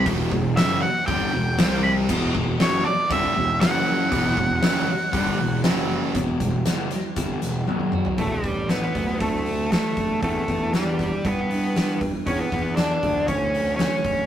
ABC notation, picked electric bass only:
X:1
M:4/4
L:1/8
Q:1/4=118
K:Edor
V:1 name="Picked electric bass" clef=bass
E,,, E,,, F,,, z G,,, E,,, =C,,2 | E,,, E,,, F,,, z G,,, E,,, F,,,2 | E,,, E,,, F,,, z G,,, E,,, F,,,2 | E,,, E,,, F,,, z G,,, E,,, F,,,2 |
E,,, A,,,2 D,,4 z | E,, E,,3 G,,4 | E,, E,,2 D,,4 z |]